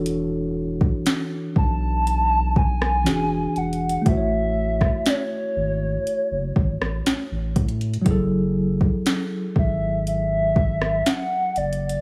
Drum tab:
HH |x-----------------------x-----------------------x-----------------------x-----------x---x---x---|x-----------------------x-----------------------x-----------------------x-----------x--x--x--x--|x-----------------------x-----------------------x-----------------------x-----------x---x---x---|
SD |------------------------o-----------------------------------------r-----o-----------------------|------------------r-----o-----------------------------------------r-----o-----------------------|------------------------o-----------------------------------------r-----o-----------------------|
BD |------------------o-----------------o-----------------------o-----------------------------------|o-----------------o-----------------------------------------o-----------------------o-----------|o-----------------o-----------------o-----------------------o-----------------------------------|